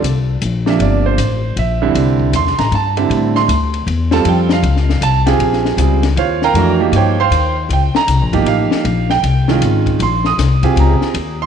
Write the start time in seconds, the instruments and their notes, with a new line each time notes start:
0.02 upright bass C2, hi-hat pedal, ride
0.41 upright bass A#1, hi-hat pedal, ride
0.66 grand piano C3 F3 A#3 D4 E5, snare
0.79 upright bass G1, grand piano D5, ride
1.06 grand piano C5
1.18 upright bass A1, hi-hat pedal, ride
1.56 upright bass A#1, grand piano E5, ride
1.82 grand piano D3 G3 C4 E4
1.94 upright bass C2, ride
2.19 kick
2.33 upright bass E2, grand piano C6, hi-hat pedal, ride
2.46 upright bass C2, snare
2.58 upright bass A1, grand piano A#5, snare, ride
2.71 upright bass G2, grand piano A5, ride
2.97 grand piano D3 G3 C4 E4, ride
3.10 upright bass A2, ride
3.36 grand piano C6, snare
3.48 upright bass D2, hi-hat pedal, ride
3.74 ride
3.87 upright bass E2, ride
4.11 grand piano G3 C4 F4 A4 A5, snare
4.25 upright bass F2, grand piano G5, ride
4.49 grand piano F5, snare
4.63 upright bass C#2, ride
4.77 snare
4.90 snare
5.01 upright bass C2, grand piano A5, hi-hat pedal, ride
5.26 grand piano C4 F4 G4 G#4, snare, ride
5.39 upright bass A#1, ride
5.53 snare
5.65 snare
5.77 upright bass C#2, grand piano G3 C4 F4 G#4, hi-hat pedal, ride
6.03 snare, ride
6.16 upright bass D#2, grand piano F4 C5 C#5 F5, ride
6.42 grand piano A#4 F5 G5 A#5, snare
6.53 upright bass F2, grand piano E3 A3 D4 F#4, ride
6.79 grand piano F3 A#3 D#4 G4
6.92 upright bass G2, hi-hat pedal, ride
6.96 grand piano G4 C5 C#5 G5
7.20 grand piano C5 F5 G5 C6
7.30 upright bass D#2, hi-hat pedal, ride
7.69 upright bass C#2, grand piano G5, ride
7.95 grand piano A#5, muted upright bass stroke, snare
8.07 upright bass C2, hi-hat pedal, ride
8.21 upright bass A#1
8.33 upright bass G1, grand piano F3 A#3 D#4 G4, kick, ride
8.46 upright bass A1, grand piano F5, ride
8.71 muted upright bass stroke, snare
8.84 upright bass A#1, ride
9.10 grand piano G5, snare
9.23 upright bass C2, ride
9.48 grand piano D#3 G#3 C#4 F4, snare
9.61 upright bass G#1, hi-hat pedal, ride
9.86 kick, ride
9.99 upright bass A#1, grand piano C6, ride
10.24 grand piano D#6, snare
10.38 upright bass C2, snare, hi-hat pedal, ride
10.63 grand piano C4 F4 G4 G#4, kick, ride
10.76 upright bass C#2, ride
10.80 grand piano A#5
11.01 muted upright bass stroke, snare
11.14 upright bass D#2, ride
11.42 grand piano C6